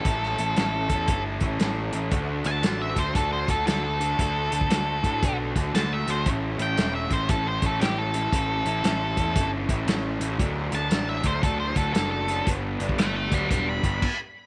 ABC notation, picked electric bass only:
X:1
M:4/4
L:1/8
Q:"Swing" 1/4=116
K:Amix
V:1 name="Picked electric bass" clef=bass
A,,, A,,, A,,, E,, G,,, A,,, A,,, A,,, | D,, D,, A,,, D,, D,, D,, D,,2 | D,, D,, D,, A,, B,,, D,, D,, D,, | A,,, A,,, E,,, A,,, A,,, A,,, A,,,2 |
A,,, A,,, A,,, E,, G,,, A,,, A,,, A,,, | D,, D,, A,,, D,, D,, D,, F,,,2 | G,,, G,,, G,,, D,, E,,, G,,, z2 |]